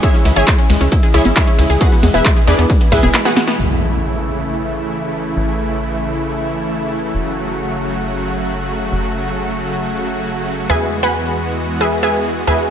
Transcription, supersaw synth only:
0.03 C#3 E3 G#3 E4
0.25 C#3 E3 G#3 E4
0.47 C#3 E3 G#3 E4
0.70 C#3 E3 G#3 E4
0.92 C#3 E3 G#3 E4
1.03 C#3 E3 G#3 E4
1.25 C#3 E3 G#3 E4
1.47 C#3 E3 G#3 E4
1.70 C#3 E3 G#3 E4
1.81 B2 E3 G#3 E4
2.03 B2 E3 G#3 E4
2.25 B2 E3 G#3 E4
2.47 B2 E3 G#3 E4
2.70 B2 E3 G#3 E4
2.81 B2 E3 G#3 E4
3.03 B2 E3 G#3 E4
3.25 B2 E3 G#3 E4
3.47 B2 E3 G#3 E4
3.59 C#3 E3 A3 E4
3.81 C#3 E3 A3 E4
4.03 C#3 E3 A3 E4
4.25 C#3 E3 A3 E4
4.47 C#3 E3 A3 E4
4.58 C#3 E3 A3 E4
4.81 C#3 E3 A3 E4
5.03 C#3 E3 A3 E4
5.25 C#3 E3 A3 E4
5.36 C#3 E3 A3 E4
5.58 C#3 E3 A3 E4
5.81 C#3 E3 A3 E4
6.03 C#3 E3 A3 E4
6.25 C#3 E3 A3 E4
6.36 C#3 E3 A3 E4
6.59 C#3 E3 A3 E4
6.81 C#3 E3 A3 E4
7.03 C#3 E3 A3 E4
7.14 C#3 F#3 A3 F#4
7.36 C#3 F#3 A3 F#4
7.59 C#3 F#3 A3 F#4
7.81 C#3 F#3 A3 F#4
8.03 C#3 F#3 A3 F#4
8.14 C#3 F#3 A3 F#4
8.36 C#3 F#3 A3 F#4
8.59 C#3 F#3 A3 F#4
8.81 C#3 F#3 A3 F#4
8.92 C#3 F#3 A3 F#4
9.14 C#3 F#3 A3 F#4
9.36 C#3 F#3 A3 F#4
9.58 C#3 F#3 A3 F#4
9.81 C#3 F#3 A3 F#4
9.92 C#3 F#3 A3 F#4
10.14 C#3 F#3 A3 F#4
10.36 C#3 F#3 A3 F#4
10.58 C#3 F#3 A3 F#4
10.70 E3 G#3 B3 F#4
10.92 E3 G#3 B3 F#4
11.14 E3 G#3 B3 F#4
11.36 E3 G#3 B3 F#4
11.58 E3 G#3 B3 F#4
11.70 E3 G#3 B3 F#4
11.92 E3 G#3 B3 F#4
12.14 E3 G#3 B3 F#4
12.36 E3 G#3 B3 F#4
12.47 E3 G#3 C#4 F#4

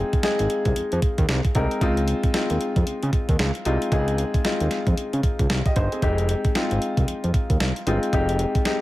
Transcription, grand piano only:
Already playing: G#3 C4 D#4 F4 G#4
0.23 G#3 C4 D#4 G#4
1.55 G#3 C4 D#4 A#4
1.81 G#3 C4 D#4 F4
2.34 G#3 C4 D#4 F4
3.65 G#3 C4 D#4 F4
3.92 G#3 C4 D#4 G#4
4.44 G#3 C4 D#4 F4
5.66 G4 D#5
5.76 D#4 C5
5.92 C4 G#4
6.02 G#3 C4 D#4 G4
6.55 G#3 C4 D#4 F4
7.86 G#3 C4 D#4 F4
8.13 G#3 C4 D#4 G4
8.65 G#3 C4 D#4 G4

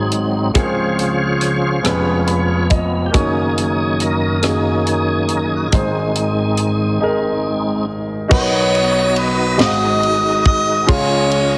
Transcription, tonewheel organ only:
Already playing: G#2 F#3 C4 D#4
0.54 C#3 F3 F4 G#4 C5 C#5
1.85 F2 F3 B3
3.06 G4
3.13 F#2 D#3 A#3 C#4 D#4 G#4
4.01 A#4
4.43 C#4 D#4 G#4
5.37 A#4
5.47 G#4
5.57 F#4
5.65 F4 G#4
5.75 G#2 D#3 G#3 C4 D#4
8.32 B3 D#4 F#4 D#5
9.61 G#3 D#5
10.89 C#4 F4

